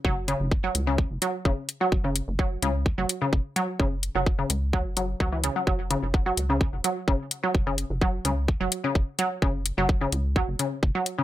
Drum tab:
HH |-x-x-x-x|-x-x-x-x|-x-x-x-x|-x-x-x-x|
BD |o-o-o-o-|o-o-o-o-|o-o-o-o-|o-o-o-o-|

HH |-x-x-x-x|-x-x-x-x|
BD |o-o-o-o-|o-o-o-o-|